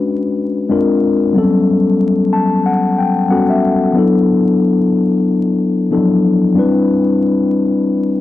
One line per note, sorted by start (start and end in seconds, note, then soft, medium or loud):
0.00 0.64 G#3 medium
0.00 0.64 C#4 medium
0.00 0.65 D4 medium
0.00 0.66 F#4 medium
0.00 0.66 B4 medium
0.69 1.34 G#3 medium
0.69 1.34 C4 medium
0.69 1.35 D4 medium
0.69 1.35 F4 medium
0.69 1.35 A#4 medium
1.33 3.27 F#3 medium
1.33 3.25 G3 medium
1.33 3.26 B3 medium
1.33 1.42 C4 medium
1.38 3.27 A4 medium
1.42 3.29 C#4 medium
2.33 2.63 A5 medium
2.66 2.95 F#5 medium
2.98 3.28 G5 medium
3.29 3.94 G3 soft
3.29 3.94 B3 medium
3.29 3.95 C#4 medium
3.29 3.95 F#4 soft
3.29 3.96 A4 medium
3.29 3.47 F#5 medium
3.50 3.92 E5 medium
3.94 5.86 F#3 medium
3.94 5.86 B3 medium
3.94 5.87 D4 medium
3.94 5.88 E4 medium
3.99 5.88 A4 medium
5.91 5.98 F3 soft
5.91 6.56 B3 soft
5.91 6.56 D4 soft
5.91 6.56 E4 soft
5.91 6.57 A4 medium
5.97 6.59 F#3 medium
6.54 8.21 G3 medium
6.54 8.21 C4 medium
6.54 8.21 D4 medium
6.54 8.21 E4 medium
6.59 8.21 B4 medium